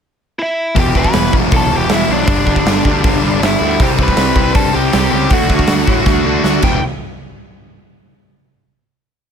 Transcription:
0.39 lead electric guitar E4 E5
0.75 picked electric bass E1, distorted electric guitar E2 B2 E3, lead electric guitar G4, kick, open hi-hat
0.80 lead electric guitar G5
0.95 picked electric bass E1, distorted electric guitar E2 B2 E3, lead electric guitar B4, kick
0.99 lead electric guitar B5
1.04 kick
1.13 picked electric bass E1, distorted electric guitar E2 B2 E3, snare, open hi-hat
1.32 picked electric bass E1, distorted electric guitar E2 B2 E3, kick
1.51 picked electric bass B1, distorted electric guitar E2 B2 E3, lead electric guitar A4, kick, open hi-hat
1.56 lead electric guitar A5
1.71 picked electric bass E1, distorted electric guitar E2 B2 E3
1.75 lead electric guitar G4 G5
1.89 picked electric bass E1, distorted electric guitar E2 B2 E3, lead electric guitar E4, snare, open hi-hat
1.95 lead electric guitar E5
2.08 picked electric bass B1, distorted electric guitar E2 B2 E3, lead electric guitar D4
2.14 lead electric guitar D5
2.27 picked electric bass G1, distorted electric guitar G2 D3 G3, kick, open hi-hat
2.46 picked electric bass G1, distorted electric guitar G2 D3 G3, kick
2.56 kick
2.65 picked electric bass G1, distorted electric guitar G2 D3 G3, snare, open hi-hat
2.85 picked electric bass D2, distorted electric guitar G2 D3 G3, kick
3.03 picked electric bass G1, distorted electric guitar G2 D3 G3, kick, open hi-hat
3.22 picked electric bass G1, distorted electric guitar G2 D3 G3
3.40 picked electric bass G1, distorted electric guitar G2 D3 G3, snare, open hi-hat
3.46 lead electric guitar E4 E5
3.60 picked electric bass D2, distorted electric guitar G2 D3 G3
3.79 picked electric bass C2, distorted electric guitar C3 G3 C4, lead electric guitar G4 G5, kick, open hi-hat
3.98 picked electric bass C2, distorted electric guitar C3 G3 C4, kick
4.03 lead electric guitar B4 B5
4.08 kick
4.17 picked electric bass C2, distorted electric guitar C3 G3 C4, snare, open hi-hat
4.35 picked electric bass C2, distorted electric guitar C3 G3 C4, kick
4.53 picked electric bass G2, distorted electric guitar C3 G3 C4, lead electric guitar A4 A5, kick, open hi-hat
4.72 picked electric bass C2, distorted electric guitar C3 G3 C4, lead electric guitar G4 G5
4.92 picked electric bass C2, distorted electric guitar C3 G3 C4, lead electric guitar G4 G5, snare, open hi-hat
5.11 picked electric bass C#2, distorted electric guitar C3 G3 C4, lead electric guitar G4 G5
5.30 picked electric bass D2, distorted electric guitar D3 A3 D4, lead electric guitar F#5, kick, open hi-hat
5.34 lead electric guitar F#4
5.49 picked electric bass D2, distorted electric guitar D3 A3 D4, kick
5.59 kick
5.67 picked electric bass D2, distorted electric guitar D3 A3 D4, snare, open hi-hat
5.87 picked electric bass A2, distorted electric guitar D3 A3 D4, kick
6.06 picked electric bass D2, distorted electric guitar D3 A3 D4, kick, snare
6.25 picked electric bass D2, distorted electric guitar D3 A3 D4
6.43 picked electric bass D2, distorted electric guitar D3 A3 D4, snare
6.62 picked electric bass E1, distorted electric guitar E2 B2 E3, lead electric guitar G5, kick, crash

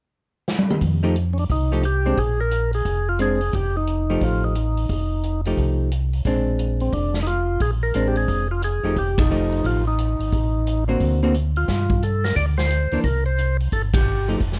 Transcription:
0.48 snare
0.59 high tom
0.70 mid tom
0.81 tonewheel organ F2, kick, open hi-hat
1.03 hollow-body jazz guitar F3 A3 D#4 G4
1.16 closed hi-hat
1.33 tonewheel organ C#4
1.38 tonewheel organ D4, open hi-hat
1.50 tonewheel organ C2 D#4, kick, open hi-hat
1.72 hollow-body jazz guitar F3 A3 D#4 G4
1.83 tonewheel organ G4, closed hi-hat
2.06 hollow-body jazz guitar G#3 C4 D4
2.17 tonewheel organ A#1 G#4, kick, open hi-hat
2.41 tonewheel organ A#4
2.51 closed hi-hat
2.73 tonewheel organ G#4, open hi-hat
2.85 tonewheel organ F1, kick, open hi-hat
3.09 tonewheel organ F4
3.19 hollow-body jazz guitar G#3 C4 D4, tonewheel organ G#4, closed hi-hat
3.41 open hi-hat
3.53 tonewheel organ F1 G4, kick, open hi-hat
3.77 tonewheel organ D#4
3.87 closed hi-hat
4.10 hollow-body jazz guitar F3 A3 D#4 G4
4.21 tonewheel organ A1 F4, kick, open hi-hat
4.44 tonewheel organ D#4
4.55 closed hi-hat
4.77 open hi-hat
4.89 tonewheel organ F1, kick, open hi-hat
5.23 closed hi-hat
5.45 hollow-body jazz guitar F3 A3 D#4 G4, open hi-hat
5.57 tonewheel organ C2, kick, open hi-hat
5.92 closed hi-hat
6.13 open hi-hat
6.25 tonewheel organ A#1, hollow-body jazz guitar G#3 C4 D4, kick, open hi-hat
6.59 closed hi-hat
6.80 tonewheel organ C4, open hi-hat
6.93 tonewheel organ F1 D4, kick, open hi-hat
7.14 snare
7.23 tonewheel organ D#4, closed hi-hat
7.27 tonewheel organ F4
7.60 tonewheel organ A#1 G#4, kick, open hi-hat
7.83 tonewheel organ A#4
7.94 tonewheel organ A1, hollow-body jazz guitar G#3 C4 D4, closed hi-hat
8.08 tonewheel organ G4
8.16 tonewheel organ G#4, open hi-hat
8.28 tonewheel organ F1, kick, open hi-hat
8.51 tonewheel organ F4
8.62 tonewheel organ G#4, closed hi-hat
8.83 tonewheel organ E1, hollow-body jazz guitar F3 A3 D#4 G4
8.96 tonewheel organ F1 G4, kick, open hi-hat
9.18 tonewheel organ D#4, kick, ride
9.31 hollow-body jazz guitar F3 A3 D#4 G4
9.52 open hi-hat
9.64 tonewheel organ A1 F4, kick, open hi-hat
9.87 tonewheel organ D#4
9.99 closed hi-hat
10.19 tonewheel organ G#1, open hi-hat
10.32 tonewheel organ A1, kick, open hi-hat
10.67 closed hi-hat
10.88 hollow-body jazz guitar D3 A#3 C4 F#4
11.00 tonewheel organ D2, kick, open hi-hat
11.23 hollow-body jazz guitar D3 A#3 C4 F#4
11.35 closed hi-hat
11.56 tonewheel organ F4, open hi-hat
11.68 tonewheel organ G2, kick, snare, open hi-hat
11.90 kick
12.03 tonewheel organ A4, closed hi-hat
12.24 tonewheel organ A#4, snare, open hi-hat
12.36 tonewheel organ D2 D5, kick, open hi-hat
12.58 tonewheel organ C5, snare
12.70 closed hi-hat
12.91 tonewheel organ D2, hollow-body jazz guitar E3 A#3 D4, open hi-hat
13.04 tonewheel organ C2 A#4, kick, open hi-hat
13.26 tonewheel organ C5
13.38 closed hi-hat
13.60 open hi-hat
13.72 tonewheel organ G1 A4, kick, open hi-hat
13.94 tonewheel organ G4, kick, ride
14.28 hollow-body jazz guitar F3 A3 D#4 G4, open hi-hat
14.40 tonewheel organ F1, kick, open hi-hat
14.52 snare

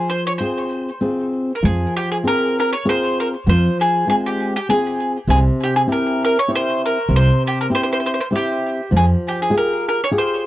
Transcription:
Already playing: nylon-string guitar F3
0.10 mandolin C5
0.27 mandolin C#5
0.38 nylon-string guitar C4 F4 G#4, mandolin C5
1.01 nylon-string guitar C4 F4 G#4
1.55 mandolin A#4
1.63 upright bass F2, nylon-string guitar F3, mandolin G#4
1.97 mandolin G4
2.12 mandolin G#4
2.24 nylon-string guitar C4 F4 G#4, mandolin A#4
2.60 mandolin A#4
2.73 mandolin C#5
2.85 nylon-string guitar C4 F4 G#4
2.89 mandolin C5
3.20 mandolin A#4
3.47 upright bass F2, nylon-string guitar F3, mandolin C5
3.81 mandolin G#4
4.07 nylon-string guitar G#3 C4 F4, mandolin G#4
4.26 mandolin G4
4.56 mandolin G4
4.69 nylon-string guitar C4 F4 G#4, mandolin G#4
5.27 upright bass C2, nylon-string guitar C3, mandolin G#4
5.63 mandolin G4
5.76 mandolin G#4
5.87 nylon-string guitar C4 E4 G4
5.92 mandolin A#4
6.25 mandolin A#4
6.39 mandolin C#5
6.48 nylon-string guitar C4 E4 G4
6.55 mandolin C5
6.86 mandolin A#4
7.09 upright bass C2, nylon-string guitar C3
7.16 mandolin C5
7.47 mandolin G4
7.61 mandolin A#4
7.70 nylon-string guitar C4 E4 G4
7.75 mandolin C5
7.83 mandolin C5
7.93 mandolin C5
8.00 mandolin C5
8.06 mandolin C5
8.14 mandolin C5
8.20 mandolin C5
8.31 nylon-string guitar C4 E4 G4
8.36 mandolin G4
8.91 upright bass F2, nylon-string guitar F3
8.97 mandolin G#4
9.28 mandolin G4
9.42 mandolin G#4
9.50 nylon-string guitar F4 G4 G#4
9.58 mandolin A#4
9.89 mandolin A#4
10.04 mandolin C#5
10.11 nylon-string guitar F4 G4 G#4
10.18 mandolin C5

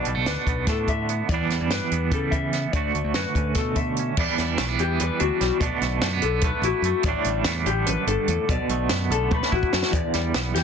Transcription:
Already playing: clean electric guitar B2 D3 D4 D5
0.05 picked electric bass B1, clean electric guitar G3, closed hi-hat
0.15 picked electric bass B1, clean electric guitar A3
0.26 picked electric bass D2, clean electric guitar D4 B4, snare, closed hi-hat
0.46 picked electric bass B1, clean electric guitar B3, kick, closed hi-hat
0.67 picked electric bass A2, clean electric guitar A3 A4, kick, snare, closed hi-hat
0.88 clean electric guitar D3 E5, kick, closed hi-hat
1.09 clean electric guitar B3, closed hi-hat
1.29 picked electric bass E2, clean electric guitar E2 E3 D5, kick, closed hi-hat
1.33 clean electric guitar G3 B3 D4
1.50 picked electric bass E2, clean electric guitar G3, snare, closed hi-hat
1.61 picked electric bass E2
1.70 picked electric bass G2, clean electric guitar B4, snare, closed hi-hat
1.91 picked electric bass E2, clean electric guitar B3, closed hi-hat
2.12 picked electric bass C#3, clean electric guitar G3 A4, kick, closed hi-hat
2.31 clean electric guitar E3 E5, kick, closed hi-hat
2.53 clean electric guitar B3, snare, closed hi-hat
2.73 picked electric bass D2, clean electric guitar D2 D3 A3 F#4 D5, kick, closed hi-hat
2.95 picked electric bass D2, clean electric guitar A3, closed hi-hat
3.04 picked electric bass D2
3.14 picked electric bass F#2, clean electric guitar F#4 B4, snare, closed hi-hat
3.35 picked electric bass D2, clean electric guitar C#4, kick, closed hi-hat
3.55 picked electric bass B2, clean electric guitar A3 A4, kick, snare, closed hi-hat
3.75 clean electric guitar D3 E5, kick, closed hi-hat
3.97 clean electric guitar C#4, closed hi-hat
4.17 picked electric bass E2, clean electric guitar E2 E3 G3 B3 D4 D5, kick, crash
4.38 picked electric bass E2, clean electric guitar G3, snare, closed hi-hat
4.58 picked electric bass B1, clean electric guitar A3, snare, closed hi-hat
4.69 clean electric guitar B3
4.79 picked electric bass E2, clean electric guitar E3 G4, closed hi-hat
5.00 picked electric bass E2, clean electric guitar G3 B4, closed hi-hat
5.20 picked electric bass D2, clean electric guitar D4 F#4, closed hi-hat
5.41 picked electric bass B1, clean electric guitar G3, snare, closed hi-hat
5.60 picked electric bass B1, clean electric guitar B2 D3 A3 B3 D4 D5, kick, closed hi-hat
5.81 picked electric bass B1, clean electric guitar A3, snare, closed hi-hat
6.01 picked electric bass F#2, clean electric guitar A3, snare, closed hi-hat
6.13 clean electric guitar B3
6.22 picked electric bass B1, clean electric guitar D3 A4, closed hi-hat
6.41 picked electric bass B1, clean electric guitar A3 B4, kick, closed hi-hat
6.62 picked electric bass A1, clean electric guitar E4 F#4, closed hi-hat
6.82 picked electric bass F#2, clean electric guitar A3, closed hi-hat
7.03 picked electric bass A1, clean electric guitar A2 D3 D5, kick, closed hi-hat
7.07 clean electric guitar G3 A3 D4
7.24 picked electric bass A1, clean electric guitar G3, closed hi-hat
7.44 picked electric bass E2, clean electric guitar A3, snare, closed hi-hat
7.66 picked electric bass A1, clean electric guitar D3 G4, closed hi-hat
7.86 picked electric bass A1, clean electric guitar F#2 B4, closed hi-hat
8.07 picked electric bass G1, clean electric guitar G2 A4, closed hi-hat
8.28 picked electric bass E2, clean electric guitar A2, closed hi-hat
8.49 picked electric bass B1, clean electric guitar B2 D5, kick, closed hi-hat
8.69 picked electric bass B1, clean electric guitar A3, closed hi-hat
8.89 picked electric bass F#2, clean electric guitar B3, snare, closed hi-hat
9.10 picked electric bass B1, clean electric guitar D3 A4, closed hi-hat
9.31 picked electric bass B1, clean electric guitar A3 B4, kick, high tom
9.43 snare
9.52 picked electric bass A1, clean electric guitar E4 F#4, kick
9.63 kick
9.73 picked electric bass F#2, clean electric guitar A3, snare
9.83 snare
9.91 clean electric guitar E2 D5, picked electric bass E2, kick, closed hi-hat
10.14 picked electric bass E2, clean electric guitar G3, snare, closed hi-hat
10.34 picked electric bass B1, clean electric guitar B3, snare, closed hi-hat
10.54 picked electric bass E2, clean electric guitar E3 G4, snare, closed hi-hat

